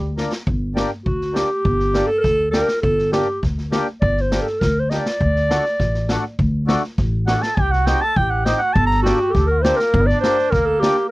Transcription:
Already playing: D2 G3 G4
0.17 A#3 D4 A#4, snare
0.32 snare
0.47 G1, kick
0.75 A#3 D4 G4, snare
1.05 D2 F#4, kick
1.21 snare
1.33 A#3 D4 G4, snare
1.65 G1, kick
1.80 snare
1.94 A#3 D4 G4, snare
2.07 A4
2.18 A4 A#4
2.24 D2, kick, snare
2.51 A#3 D4 G4 A#4, snare
2.68 snare
2.82 G1 A4, kick
2.98 snare
3.12 A#3 D4 G4, snare
3.43 D2, kick, snare
3.58 snare
3.72 A#3 D4 G4, snare
4.01 G1 D5, kick
4.17 snare
4.21 C5
4.32 A#3 D4 G4, snare
4.41 A4
4.47 snare
4.60 D2 A#4, kick, snare
4.79 C5
4.90 A#3 D4 G4 D#5, snare
4.99 D5
5.06 snare
5.21 D2, kick
5.36 snare
5.49 A3 D4 F#4, snare
5.65 snare
5.80 A1, kick, snare
5.94 snare
6.09 A3 D4 F#4, snare
6.39 D2, kick
6.67 A3 D4 F#4, snare
6.84 snare
6.98 A1, kick, snare
7.27 A3 D4 F#4 F#5, snare
7.42 A4 A5, snare
7.56 C2 G4 G5, kick
7.71 F#4 F#5, snare
7.86 C4 D#4 G4 G5, snare
8.01 A4 A5
8.16 A1 G4 G5, kick
8.30 F#5
8.44 C4 D#4 G4 G5, snare
8.55 F#5 G5
8.63 F#4
8.73 G1 A4 A5, kick
8.86 A#5
8.91 snare
9.03 A#3 D4 F#4 G4, snare
9.20 G4
9.30 G4 A4
9.35 D2 A4, kick, snare
9.47 A#4
9.51 F#4
9.62 A#3 C4 D4 G4 C5, snare
9.77 A#4, snare
9.82 A#3
9.94 G1, kick
10.02 D#4
10.07 D4 D5, snare
10.20 A#3 D4 G4 C5, snare
10.39 snare
10.50 D2 A#3 A#4, kick, snare
10.66 A4
10.80 A#3 D4 G4, snare

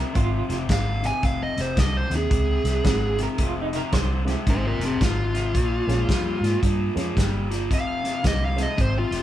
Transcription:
Already playing: F2 C3 A#4
0.14 G#1 F2 C3 F4, kick, closed hi-hat
0.49 F1 F2 C3, snare, closed hi-hat
0.69 G#1 F2 D3 F5, kick, snare, closed hi-hat
1.02 F2 C3, snare, closed hi-hat
1.07 G#5
1.22 F1 F2 C3 F5, kick, closed hi-hat
1.43 D#5
1.56 F1 F2 C3, snare, closed hi-hat
1.61 C5
1.77 C2 F2 D3 D#5, kick, snare, closed hi-hat
1.97 C5
2.10 D#2 F2 C3, snare, closed hi-hat
2.17 G#4
2.30 C#2 F2 C3, kick, closed hi-hat
2.64 C2 F2 C3, snare, closed hi-hat
2.84 G#1 F2 D3 G#3 C4 D#4 F4, kick, snare, closed hi-hat
3.19 F2 C3, snare, closed hi-hat
3.23 A#4
3.38 F1 F2 C3, kick, closed hi-hat
3.43 F4
3.62 D#4
3.73 F2 C3 A#4, snare, closed hi-hat
3.92 C2 F2 D3 C5, kick, snare, closed hi-hat
4.24 F2 C3 G#3 C4 D#4 F4, closed hi-hat
4.29 snare
4.46 G#1 F2 C3 D#4 C5, kick, closed hi-hat
4.67 F4 A#4
4.79 F1 F2 C3, snare, closed hi-hat
4.85 C4 G#4
5.01 G#1 F2 D3 F4, kick, snare, closed hi-hat
5.35 F2 C3, snare, closed hi-hat
5.54 A#1 A#2 F3, kick, closed hi-hat
5.87 A#1 A#2 F3 G#3 A#3 C#4 F4, snare, closed hi-hat
6.08 F2 A#2 G3, kick, snare, closed hi-hat
6.41 G#2 A#2 F3, closed hi-hat
6.45 snare
6.63 G2 A#2 F3, kick, closed hi-hat
6.94 F2 A#2 F3 G#3 A#3 C#4 F4, snare, closed hi-hat
7.17 G1 A#2 G3, kick, snare, closed hi-hat
7.50 A#2 F3, snare, closed hi-hat
7.70 F1 F2 C3 F5, kick, closed hi-hat
8.04 F2 C3, snare, closed hi-hat
8.24 C2 F2 D3 D#5, kick, snare, closed hi-hat
8.45 F5
8.56 F2 C3 G#3 C4 D#4 F4, snare, closed hi-hat
8.63 D#5
8.78 G#1 F2 C3 C5, kick, closed hi-hat
8.99 F4
9.11 F1 F2 C3, snare, closed hi-hat

